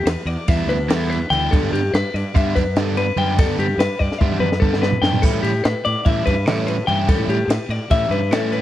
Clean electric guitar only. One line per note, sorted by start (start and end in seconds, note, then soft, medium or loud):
0.06 0.27 B4 loud
0.27 0.48 D5 medium
0.48 0.69 E5 medium
0.69 0.90 B4 medium
0.90 1.10 A4 medium
1.10 1.31 B4 medium
1.30 1.51 G5 medium
1.51 1.72 A4 medium
1.73 1.94 G4 medium
1.94 2.14 B4 medium
2.14 2.35 D5 medium
2.35 2.55 E5 loud
2.55 2.76 B4 medium
2.76 2.97 A4 medium
2.97 3.17 B4 medium
3.18 3.38 G5 medium
3.39 3.59 A4 medium
3.59 3.79 G4 medium
3.79 3.99 B4 medium
3.99 4.19 D5 medium
4.19 4.40 E5 medium
4.40 4.61 B4 medium
4.60 4.81 A4 medium
4.82 5.02 B4 medium
5.02 5.23 G5 medium
5.22 5.42 A4 medium
5.43 5.64 G4 medium
5.64 5.85 B4 medium
5.85 6.05 D5 medium
6.05 6.26 E5 medium
6.26 6.47 B4 medium
6.47 6.67 A4 loud
6.67 6.88 B4 medium
6.87 7.08 G5 medium
7.09 7.29 A4 medium
7.30 7.50 G4 medium
7.49 7.70 B4 medium
7.70 7.91 D5 medium
7.91 8.12 E5 medium
8.11 8.32 B4 medium
8.32 8.53 A4 loud
8.52 8.62 B4 medium